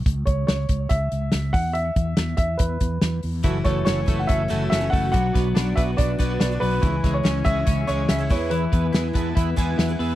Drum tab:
HH |xxxxxxxo|xxxxxxxo|xxxxxxxo|xxxxxxxo|
SD |--o---o-|--o---o-|-oo---o-|-oo---o-|
BD |oo-oo--o|-o-ooo--|oo-oo--o|oo-ooo--|

HH |xxxxxxxo|xxxxxxxo|
SD |-oo---o-|--o---o-|
BD |oo-oo--o|-o-ooo--|